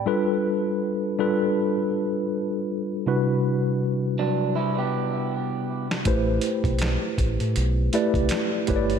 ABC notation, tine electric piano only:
X:1
M:4/4
L:1/8
Q:"Swing 16ths" 1/4=80
K:Ador
V:1 name="Tine electric piano"
[G,D=FAB] z2 [G,DFAB] z4 | [C,G,DEFB]3 z4 z | [A,EGBc] z4 [A,EGBd]2 [A,EGB^cd] |]